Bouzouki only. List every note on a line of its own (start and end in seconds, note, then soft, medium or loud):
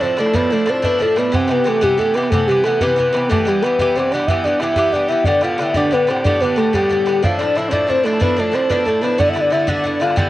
0.01 0.16 A2 medium
0.01 0.17 F3 medium
0.01 0.18 D4 medium
0.05 0.19 E4 medium
0.17 0.32 A2 medium
0.17 0.33 F3 medium
0.17 0.34 D4 medium
0.17 0.35 E4 medium
0.34 0.49 A2 medium
0.34 0.51 F3 medium
0.34 0.52 D4 medium
0.34 0.52 E4 medium
0.50 0.65 A2 medium
0.50 0.66 F3 medium
0.50 0.68 D4 medium
0.50 0.68 E4 medium
0.66 0.81 A2 medium
0.66 0.82 F3 medium
0.66 0.83 D4 medium
0.66 0.84 E4 medium
0.82 0.98 A2 medium
0.82 0.99 F3 medium
0.82 1.00 D4 medium
0.82 1.01 E4 medium
0.99 1.15 A2 medium
0.99 1.16 F3 medium
0.99 1.17 D4 medium
0.99 1.18 E4 medium
1.16 1.31 A2 medium
1.16 1.32 F3 medium
1.16 1.33 D4 medium
1.16 1.34 E4 medium
1.32 1.47 C3 medium
1.32 1.48 E3 medium
1.32 1.49 B3 medium
1.32 1.50 G4 medium
1.48 1.63 C3 medium
1.48 1.64 E3 medium
1.48 1.65 B3 medium
1.48 1.66 G4 medium
1.64 1.80 C3 medium
1.64 1.81 E3 medium
1.64 1.82 B3 medium
1.64 1.82 G4 medium
1.81 1.97 C3 medium
1.81 1.98 E3 medium
1.81 1.99 B3 medium
1.81 2.00 G4 medium
1.98 2.13 C3 medium
1.98 2.14 E3 medium
1.98 2.15 B3 medium
1.98 2.17 G4 medium
2.14 2.31 C3 medium
2.14 2.31 E3 medium
2.14 2.32 B3 medium
2.14 2.32 G4 medium
2.32 2.47 C3 medium
2.32 2.48 E3 medium
2.32 2.49 B3 medium
2.32 2.49 G4 medium
2.48 2.62 C3 medium
2.48 2.64 E3 medium
2.48 2.65 B3 medium
2.48 2.66 G4 medium
2.64 2.80 C3 soft
2.64 2.80 E3 medium
2.64 2.81 B3 medium
2.64 2.82 G4 medium
2.81 2.95 C3 medium
2.81 2.96 E3 medium
2.81 2.97 B3 medium
2.81 2.98 G4 medium
2.96 3.11 C3 medium
2.96 3.13 E3 medium
2.96 3.14 B3 medium
2.96 3.15 G4 medium
3.13 3.29 C3 medium
3.13 3.29 E3 medium
3.13 3.30 B3 medium
3.13 3.30 G4 medium
3.29 3.44 G2 medium
3.29 3.46 E3 medium
3.29 3.46 B3 medium
3.29 3.47 G4 medium
3.45 3.61 G2 medium
3.45 3.63 E3 medium
3.45 3.63 B3 medium
3.45 3.64 G4 medium
3.62 3.78 G2 medium
3.62 3.79 E3 medium
3.62 3.80 B3 medium
3.62 3.80 G4 medium
3.79 3.94 G2 medium
3.79 3.96 E3 medium
3.79 3.97 B3 medium
3.79 3.97 G4 medium
3.96 4.11 G2 medium
3.96 4.12 E3 medium
3.96 4.13 B3 medium
3.96 4.14 G4 medium
4.12 4.27 G2 medium
4.12 4.28 E3 medium
4.12 4.29 B3 medium
4.12 4.30 G4 medium
4.28 4.43 G2 medium
4.28 4.44 E3 medium
4.28 4.45 B3 medium
4.28 4.46 G4 medium
4.44 4.59 G2 medium
4.44 4.61 E3 medium
4.44 4.61 B3 medium
4.44 4.62 G4 medium
4.60 4.75 G2 medium
4.60 4.76 E3 medium
4.60 4.77 B3 medium
4.60 4.78 G4 medium
4.76 4.91 G2 medium
4.76 4.93 E3 medium
4.76 4.94 B3 medium
4.76 4.94 G4 medium
4.92 5.07 G2 soft
4.92 5.08 E3 soft
4.92 5.09 B3 medium
4.92 5.11 G4 medium
5.08 5.25 G2 medium
5.08 5.26 E3 medium
5.08 5.26 B3 medium
5.08 5.26 G4 medium
5.25 5.40 A2 medium
5.25 5.41 D3 medium
5.25 5.42 B3 medium
5.25 5.43 G4 medium
5.41 5.57 A2 medium
5.41 5.58 D3 medium
5.41 5.60 B3 medium
5.41 5.60 G4 medium
5.58 5.73 A2 medium
5.58 5.74 D3 medium
5.58 5.75 B3 medium
5.58 5.76 G4 medium
5.74 5.90 A2 medium
5.74 5.91 D3 medium
5.74 5.92 B3 medium
5.74 5.93 G4 medium
5.91 6.06 A2 medium
5.91 6.07 D3 medium
5.91 6.08 B3 medium
5.91 6.09 G4 medium
6.07 6.23 A2 medium
6.07 6.23 D3 medium
6.07 6.24 B3 medium
6.07 6.25 G4 medium
6.24 6.39 A2 medium
6.24 6.40 D3 medium
6.24 6.42 B3 medium
6.24 6.42 G4 medium
6.40 6.55 A2 soft
6.40 6.56 D3 medium
6.40 6.57 B3 medium
6.40 6.58 G4 medium
6.56 6.72 A2 medium
6.56 6.73 D3 medium
6.56 6.74 B3 medium
6.56 6.74 G4 medium
6.73 6.88 A2 medium
6.73 6.89 D3 medium
6.73 6.91 B3 medium
6.73 6.91 G4 medium
6.89 7.04 A2 soft
6.89 7.05 D3 medium
6.89 7.07 B3 medium
6.89 7.07 G4 medium
7.06 7.21 A2 soft
7.06 7.23 D3 soft
7.06 7.23 B3 medium
7.06 7.24 G4 medium
7.22 7.38 A2 medium
7.22 7.39 F3 medium
7.22 7.40 D4 medium
7.22 7.40 E4 medium
7.39 7.54 A2 medium
7.39 7.55 F3 medium
7.39 7.56 D4 medium
7.39 7.57 E4 medium
7.55 7.70 A2 medium
7.55 7.70 F3 medium
7.55 7.71 D4 medium
7.55 7.72 E4 medium
7.71 7.86 A2 medium
7.71 7.87 F3 medium
7.71 7.88 D4 medium
7.71 7.89 E4 medium
7.87 8.02 A2 soft
7.87 8.04 F3 medium
7.87 8.05 D4 medium
7.87 8.06 E4 medium
8.04 8.18 A2 medium
8.04 8.19 F3 medium
8.04 8.20 D4 medium
8.04 8.21 E4 medium
8.20 8.35 A2 medium
8.20 8.37 F3 medium
8.20 8.38 D4 medium
8.20 8.38 E4 medium
8.37 8.50 A2 medium
8.37 8.52 F3 medium
8.37 8.53 D4 medium
8.37 8.54 E4 medium
8.52 8.68 A2 medium
8.52 8.69 F3 medium
8.52 8.70 D4 medium
8.52 8.71 E4 medium
8.70 8.84 A2 medium
8.70 8.85 F3 medium
8.70 8.86 D4 medium
8.70 8.87 E4 medium
8.85 9.00 A2 medium
8.85 9.02 F3 medium
8.85 9.03 D4 medium
8.85 9.04 E4 medium
9.01 9.18 A2 soft
9.01 9.18 F3 medium
9.01 9.19 D4 medium
9.01 9.19 E4 medium
9.18 9.32 G2 medium
9.18 9.34 D3 medium
9.18 9.35 B3 medium
9.18 9.36 E4 medium
9.33 9.49 G2 medium
9.33 9.51 D3 medium
9.33 9.52 B3 medium
9.33 9.53 E4 medium
9.50 9.66 G2 medium
9.50 9.67 D3 medium
9.50 9.67 B3 medium
9.50 9.68 E4 medium
9.67 9.82 G2 medium
9.67 9.84 D3 medium
9.67 9.85 B3 medium
9.67 9.86 E4 medium
9.84 9.99 G2 medium
9.84 10.00 D3 medium
9.84 10.01 B3 medium
9.84 10.02 E4 medium
10.00 10.15 G2 medium
10.00 10.16 D3 medium
10.00 10.17 B3 medium
10.00 10.18 E4 medium
10.16 10.29 G2 medium
10.16 10.29 D3 medium
10.16 10.29 B3 medium
10.16 10.29 E4 medium